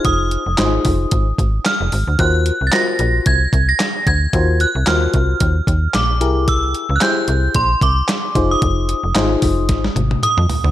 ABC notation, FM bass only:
X:1
M:4/4
L:1/16
Q:"Swing 16ths" 1/4=112
K:Ebdor
V:1 name="FM bass" clef=bass
F,,,3 F,,, A,,,2 F,,,2 A,,,2 A,,,2 z F,,, A,,, =D,, | E,,3 C,, z2 B,,,2 C,,2 C,,2 z2 =D,,2 | E,,3 C,, E,,2 C,,2 E,,2 E,,2 B,,,2 C,,2- | C,,3 D,, z2 C,,2 B,,,2 C,,2 z2 F,,,2 |
F,,,3 F,,, A,,,2 F,,,2 A,,,2 A,,,2 z F,, z =D,, |]